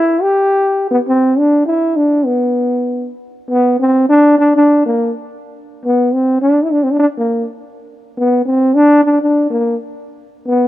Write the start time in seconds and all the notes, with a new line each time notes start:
Already playing: E4
0.22 G4
0.91 B3
1.08 C4
1.38 D4
1.66 E4
1.96 D4
2.25 B3
3.51 B3
3.80 C4
4.09 D4
4.38 D4
4.56 D4
4.86 A#3
5.85 B3
6.14 C4
6.42 D4
6.64 E4
6.72 D4
6.83 C4
6.91 D4
6.99 D4
7.18 A#3
8.18 B3
8.46 C4
8.75 D4
9.04 D4
9.22 D4
9.50 A#3
10.47 B3